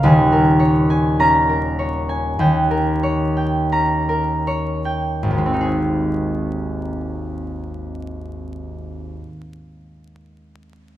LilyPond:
<<
  \new Staff \with { instrumentName = "Harp" } { \time 4/4 \key aes \major \tempo 4 = 42 << { bes''4 bes''2 bes''4 | <aes,, ees, aes c' ees' aes'>1 | } \\ { <bes' des'' aes''>16 bes'16 des''16 aes''8 bes'16 des''16 aes''16 g''16 bes'16 des''16 g''8 bes'16 des''16 g''16 | r1 | } >> }
  \new Staff \with { instrumentName = "Harp" } { \clef bass \time 4/4 \key aes \major <ees,, ees, des'>4 des'4 ees,4 des'4 | r1 | }
>>